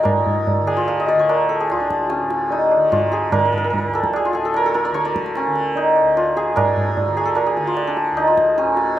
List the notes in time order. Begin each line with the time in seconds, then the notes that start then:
Already playing: D2 A2 D3 F5 G#5 A#5
0.00 A#4 C#5 D5 D#5
0.05 A2, tabla na, tabla ge
0.26 tabla ge
0.47 tabla tin, tabla ge
0.61 D3
0.67 G#4, tabla na
0.77 F4
0.88 F5, tabla na
1.00 D#5
1.08 D5, tabla te
1.15 D3
1.19 C#5
1.29 A#4, tabla na
1.49 A4, tabla te
1.60 G#4
1.70 D2 F4, tabla na
1.80 D4
1.90 tabla ke
2.10 C#4, tabla te
2.22 A2
2.30 tabla te
2.51 D#4, tabla tin
2.71 tabla na
2.76 D3
2.92 F4, tabla na, tabla ge
3.12 G#4, tabla te
3.29 D3 A#4, tabla na, tabla ge
3.39 A#4
3.45 A#4
3.52 A#4, tabla ge
3.58 A#4
3.64 A#4
3.70 A#4, tabla tin, tabla ge
3.78 A#4
3.85 D2
3.94 A4, tabla na
4.04 tabla ke
4.14 G#4, tabla na
4.25 F4
4.33 G#4 A4, tabla te
4.37 A2
4.45 A4
4.54 A#4, tabla na
4.66 A4
4.74 A#4, tabla te
4.85 D5
4.91 D3 C#5
4.95 tabla te
5.05 D5, tabla te
5.16 tabla ke
5.26 tabla te
5.35 C#4, tabla te
5.46 D3
5.56 tabla te
5.76 D#4, tabla tin
5.96 D2, tabla na
6.17 F4, tabla na
6.37 G#4, tabla te
6.53 A2 A#4, tabla na, tabla ge
6.77 tabla ge
6.97 tabla tin, tabla ge
7.06 D3
7.17 G#4, tabla na
7.25 A4
7.35 A#4, tabla na
7.46 G#4
7.57 D3, tabla te
7.67 F4
7.77 tabla na
7.87 D4
7.97 tabla te
8.10 D2
8.17 D#4, tabla na
8.27 F4
8.38 tabla ke
8.58 C#4, tabla te
8.63 A2
8.77 tabla te